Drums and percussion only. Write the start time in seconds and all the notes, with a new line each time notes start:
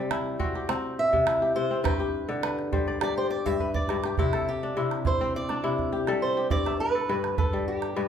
0.11 calabash click
0.40 calabash thump
0.55 calabash click
0.69 calabash click
1.13 calabash thump
1.27 calabash click
1.85 calabash thump, calabash click
2.43 calabash click
2.59 calabash click
2.73 calabash thump
2.88 calabash click
3.01 calabash click
3.31 calabash click
3.46 calabash thump
3.60 calabash thump
3.75 calabash thump
3.89 calabash click
4.04 calabash click
4.18 calabash thump
4.33 calabash click
4.91 calabash click
5.05 calabash thump
5.49 calabash click
5.79 calabash thump
6.07 calabash click
6.50 calabash thump
6.66 calabash click
7.24 calabash click
7.38 calabash thump
7.82 calabash click